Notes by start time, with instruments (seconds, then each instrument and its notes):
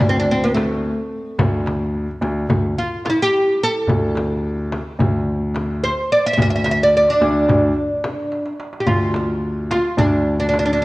0.00 grand piano D2, darbuka dum, frame drum
0.09 oud C4
0.20 oud D4
0.31 oud C4
0.44 oud B3
0.54 oud A3, darbuka tek, frame drum
0.70 darbuka ka
0.84 darbuka ka
1.11 darbuka ka
1.39 grand piano D2, darbuka dum, frame drum
1.66 darbuka tek, frame drum
1.94 darbuka ka
2.21 grand piano D2, darbuka tek, frame drum
2.49 grand piano D2, darbuka dum, frame drum
2.78 oud F4
3.05 oud F4, darbuka tek, frame drum
3.10 oud E4
3.19 oud G4, darbuka ka
3.33 darbuka ka
3.60 oud A4, darbuka ka
3.87 grand piano D2, darbuka dum, frame drum
4.15 darbuka tek, frame drum
4.44 darbuka ka
4.72 darbuka tek, frame drum
4.99 grand piano D2, darbuka dum, frame drum
5.54 darbuka tek, frame drum
5.69 darbuka ka
5.83 oud C5, darbuka ka
6.12 oud D5
6.26 oud E5
6.33 grand piano D2, oud E5
6.38 oud E5, frame drum, darbuka dum
6.50 oud E5
6.55 oud E5
6.64 oud E5, darbuka tek, frame drum
6.71 oud E5
6.83 oud D5
6.94 oud D5, darbuka ka
7.10 oud D4
7.21 grand piano D2, darbuka tek, frame drum
7.48 grand piano D2, darbuka dum, frame drum
7.63 darbuka ka
7.76 darbuka ka
8.04 darbuka tek, frame drum
8.18 darbuka ka
8.32 darbuka tek
8.46 darbuka ka
8.60 darbuka tek
8.73 darbuka ka
8.80 oud G4
8.87 grand piano D2, oud F4, frame drum, darbuka dum
9.14 darbuka tek, frame drum
9.71 oud F4, darbuka tek, frame drum
9.97 grand piano D2, oud D4, frame drum, darbuka dum
10.40 oud D4
10.49 oud D4
10.54 darbuka tek, frame drum
10.59 oud D4
10.66 oud D4
10.73 oud D4